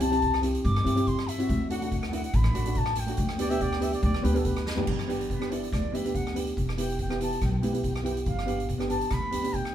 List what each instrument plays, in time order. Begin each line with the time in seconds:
Already playing: upright bass C2
0.00 steel pan E4 G4, bansuri A5, closed hi-hat
0.11 steel pan C4 E4 G4, closed hi-hat
0.22 kick, closed hi-hat
0.34 cross-stick
0.42 steel pan C4 E4 G4, closed hi-hat
0.55 closed hi-hat
0.64 upright bass G2, bansuri D6, kick, closed hi-hat
0.76 cross-stick
0.84 upright bass G2, steel pan C4 E4 G4, closed hi-hat
0.95 steel pan C4 E4 G4, closed hi-hat
1.07 bansuri C6, kick, closed hi-hat
1.19 cross-stick
1.28 bansuri E5, closed hi-hat
1.38 steel pan C4 E4 F#4, closed hi-hat
1.49 upright bass D2, kick, closed hi-hat
1.70 steel pan A3 D4 F#4, bansuri F#5, closed hi-hat
1.78 bansuri F#5
1.82 steel pan A3 D4 F#4, bansuri F#5, closed hi-hat
1.92 bansuri F#5, kick, closed hi-hat
2.00 bansuri F#5, cross-stick
2.08 steel pan A3, bansuri F#5
2.12 steel pan D4 E4, bansuri F#5, closed hi-hat
2.24 bansuri F#5, closed hi-hat
2.34 upright bass A1, bansuri B5, kick, closed hi-hat
2.44 cross-stick
2.54 upright bass A1, steel pan A3 D4 F#4, closed hi-hat
2.66 steel pan A3 D4 F#4, closed hi-hat
2.75 bansuri A5, kick, closed hi-hat
2.86 cross-stick
2.95 bansuri G5, closed hi-hat
3.07 steel pan A3 D4 F#4, closed hi-hat
3.17 upright bass D2, kick, closed hi-hat
3.29 cross-stick
3.38 steel pan B3 D4 G4, trumpet D5, closed hi-hat
3.50 steel pan B3 D4 G4, trumpet E5, closed hi-hat
3.61 trumpet D5, kick, closed hi-hat
3.73 cross-stick
3.79 steel pan B3 D4 G4, trumpet E5, closed hi-hat
3.93 trumpet D5, closed hi-hat
4.03 upright bass D2, trumpet D5, kick, closed hi-hat
4.14 cross-stick
4.22 upright bass D2, steel pan B3 D4 G4, trumpet B4, closed hi-hat
4.33 steel pan B3 D4 G4, trumpet A4, closed hi-hat
4.45 trumpet B4, kick, closed hi-hat
4.57 cross-stick
4.66 snare
4.75 steel pan B3 D4 G4, floor tom
4.87 upright bass G1, kick, crash
4.99 cross-stick
5.08 steel pan B3 D4 G4, closed hi-hat
5.21 closed hi-hat
5.30 bansuri B4, kick, closed hi-hat
5.40 steel pan B3 D4 G4, cross-stick
5.50 steel pan B3 D4 E4, bansuri D5, closed hi-hat
5.64 closed hi-hat
5.72 upright bass D2, bansuri D5, kick, cross-stick, closed hi-hat
5.92 upright bass D2, steel pan B3 D4 G4, bansuri E5, closed hi-hat
6.05 steel pan B3 D4 G4, closed hi-hat
6.15 bansuri F#5, kick, closed hi-hat
6.27 cross-stick
6.34 steel pan B3 D4 G4, closed hi-hat
6.47 closed hi-hat
6.57 upright bass E1, kick, closed hi-hat
6.69 cross-stick
6.77 steel pan B3 E4 G4, bansuri G5, closed hi-hat
6.90 closed hi-hat
6.99 bansuri G5, kick, closed hi-hat
7.09 steel pan B3 E4 G4, cross-stick
7.20 steel pan B3 E4 G4, bansuri A5, closed hi-hat
7.33 closed hi-hat
7.42 upright bass B1, bansuri G5, kick, cross-stick, closed hi-hat
7.52 bansuri G5
7.59 steel pan B3 E4, bansuri G5, closed hi-hat
7.64 upright bass B1, steel pan G4, bansuri G5
7.73 steel pan B3 E4 G4, bansuri G5, closed hi-hat
7.82 bansuri G5, kick, closed hi-hat
7.88 bansuri G5
7.96 bansuri G5, cross-stick
8.03 steel pan B3 E4 G4, bansuri G5, closed hi-hat
8.11 bansuri G5
8.17 closed hi-hat
8.26 upright bass G1, bansuri F5, kick, closed hi-hat
8.39 cross-stick
8.46 steel pan B3 D4 G4, closed hi-hat
8.60 closed hi-hat
8.69 kick, closed hi-hat
8.78 steel pan B3 D4 G4, cross-stick
8.88 steel pan B3 D4 G4, bansuri A5, closed hi-hat
9.01 closed hi-hat
9.11 upright bass D2, bansuri B5, kick, cross-stick, closed hi-hat
9.31 upright bass D2, steel pan B3 D4 G4, closed hi-hat
9.43 steel pan B3 D4 G4, closed hi-hat
9.54 bansuri G5, kick, closed hi-hat
9.65 cross-stick